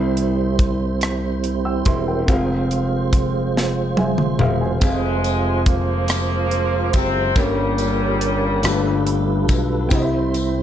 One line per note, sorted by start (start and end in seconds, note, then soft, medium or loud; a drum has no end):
0.00 1.82 C2 medium
0.00 0.97 C3 medium
0.00 2.24 G3 medium
0.00 2.23 C4 medium
0.00 2.24 C4 medium
0.00 2.24 E4 medium
0.00 2.25 G4 medium
0.00 2.24 C5 medium
0.00 1.00 E5 medium
0.17 closed hi-hat soft
0.59 kick medium
0.59 closed hi-hat medium
1.01 cross-stick loud
1.01 closed hi-hat medium
1.44 closed hi-hat soft
1.65 1.85 G5 soft
1.65 1.85 E6 medium
1.85 2.25 E1 medium
1.85 2.06 E5 soft
1.85 2.06 C6 medium
1.85 kick medium
1.85 closed hi-hat medium
2.08 2.48 A#4 soft
2.08 2.48 G5 medium
2.26 4.36 F1 medium
2.26 4.78 G#3 medium
2.26 4.77 C4 medium
2.26 4.78 C4 medium
2.26 4.78 F4 medium
2.26 4.78 C5 medium
2.26 kick loud
2.26 closed hi-hat medium
2.31 3.95 G#4 medium
2.31 3.96 F5 medium
2.71 closed hi-hat soft
3.13 kick medium
3.13 closed hi-hat medium
3.57 snare soft
3.97 4.38 G#4 soft
3.97 4.38 E5 soft
3.97 4.37 G#5 medium
3.97 high tom medium
4.18 mid tom medium
4.39 4.79 E1 medium
4.39 4.60 G#4 medium
4.39 4.79 E5 medium
4.39 4.60 F5 medium
4.39 mid tom medium
4.61 5.02 C5 soft
4.61 5.01 G#5 medium
4.80 6.90 F1 medium
4.80 6.06 C3 medium
4.80 5.67 F3 medium
4.80 7.32 G#3 soft
4.80 5.63 G#3 medium
4.80 7.31 C4 medium
4.80 7.31 C4 soft
4.80 7.32 F4 soft
4.80 7.32 C5 medium
4.80 kick medium
4.80 closed hi-hat medium
4.80 tambourine soft
4.84 7.33 G#4 soft
4.84 7.34 F5 medium
5.24 closed hi-hat soft
5.24 tambourine soft
5.66 6.91 F3 medium
5.66 6.94 A#3 medium
5.66 kick medium
5.66 closed hi-hat medium
6.08 cross-stick loud
6.08 closed hi-hat medium
6.08 tambourine medium
6.51 closed hi-hat soft
6.93 7.33 F#1 medium
6.93 7.36 C3 medium
6.93 7.36 C4 medium
6.93 kick medium
6.93 closed hi-hat medium
6.93 tambourine medium
7.36 8.60 G1 medium
7.36 8.60 G2 medium
7.36 9.45 A#2 medium
7.36 9.45 C#3 medium
7.36 8.61 G3 medium
7.36 9.49 G3 medium
7.36 8.63 A#3 medium
7.36 8.64 A#3 soft
7.36 8.63 C#4 soft
7.36 8.64 C#4 soft
7.36 8.63 G4 medium
7.36 7.42 A4 soft
7.36 8.65 C#5 medium
7.36 kick medium
7.36 closed hi-hat medium
7.36 tambourine medium
7.43 8.67 A#4 medium
7.78 closed hi-hat soft
7.78 tambourine soft
8.21 closed hi-hat medium
8.62 9.45 G1 medium
8.62 9.88 G2 medium
8.62 9.90 G3 medium
8.62 9.91 A3 medium
8.62 9.90 F4 medium
8.62 9.91 F4 medium
8.62 9.91 G4 medium
8.62 9.91 A4 medium
8.62 9.91 B4 medium
8.62 9.92 B4 medium
8.62 cross-stick loud
8.62 closed hi-hat medium
8.62 tambourine medium
9.07 closed hi-hat soft
9.48 9.88 B1 medium
9.48 kick medium
9.48 closed hi-hat medium
9.48 tambourine medium
9.89 10.63 C2 loud
9.89 10.63 C3 medium
9.89 10.63 G3 medium
9.89 10.63 C4 medium
9.89 10.63 E4 medium
9.89 10.63 G4 medium
9.89 10.63 C5 medium
9.89 kick medium
9.89 closed hi-hat medium
9.89 tambourine medium
9.95 10.00 D#5 medium
10.02 10.63 E5 medium
10.34 closed hi-hat soft
10.34 tambourine soft